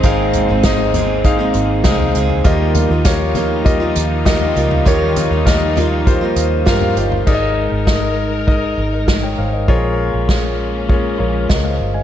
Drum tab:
CC |----------------|----------------|----------------|x---------------|
HH |x-x-x-x-x-x-x-x-|x-x-x-x-x-x-x-x-|x-x-x-x-x-x-x-x-|----------------|
SD |----o-------o---|----o-------o---|----o-------o---|----o-------o---|
FT |--o---o------o-o|--o---o------o-o|--o---o------o-o|----------------|
BD |o---o---o---o---|o---o---o---o---|o---o---o---o---|o---o---o---o---|

CC |----------------|
HH |----------------|
SD |----o-------o---|
FT |----------------|
BD |o---o---o---o---|